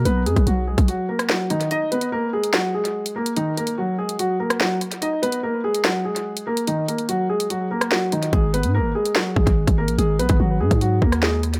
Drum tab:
HH |x-xxx--xx--x--xx|x-xx---x---x-x-x|x-xx---xx--x--xx|x-xx---x---x-x-x|
SD |-----------ro---|--------o-------|-----------ro---|--------o-------|
BD |---o---o--------|----------------|----------------|----------------|

HH |x-xxx--xx--x--xx|x-xx---x---x-x-x|x-xx---xx--x--xx|
SD |-----------ro---|--------o-------|-----------ro---|
BD |----------------|o---------oo-o--|---o---o--o-----|